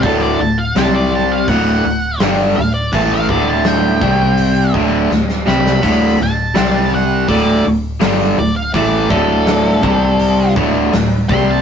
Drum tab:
HH |o---o---o---o---|o---o---o-------|o---o---o---o---|o---o---o---o---|
SD |----o-------o---|----o-------oooo|--o-o-------o---|----o-------o---|
BD |o-------o-------|o-o---o---o-----|o-------o-------|o-o---o---o---o-|